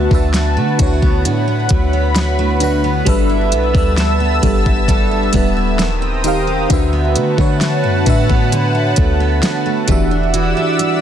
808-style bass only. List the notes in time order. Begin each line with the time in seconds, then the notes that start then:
0.11 D2
0.57 D3
0.80 D2
1.25 A2
1.71 D2
3.07 G1
3.52 B1
3.75 D2
4.43 G1
5.34 D#1
6.70 D2
7.16 D3
7.38 D3
7.84 F#2
8.07 A2
8.98 D2
9.89 E1